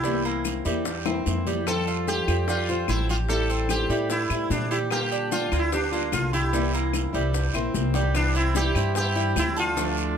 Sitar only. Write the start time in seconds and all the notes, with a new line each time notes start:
Already playing: E4
1.67 A4
2.08 G4
2.49 F4
2.89 E4
3.10 F4
3.29 A4
3.70 G4
4.11 E4
4.51 D4
4.71 E4
4.92 G4
5.32 F4
5.59 E4
5.74 D4
6.13 F4
6.33 E4
8.16 D4
8.36 E4
8.56 G4
8.97 G4
9.39 E4
9.59 F4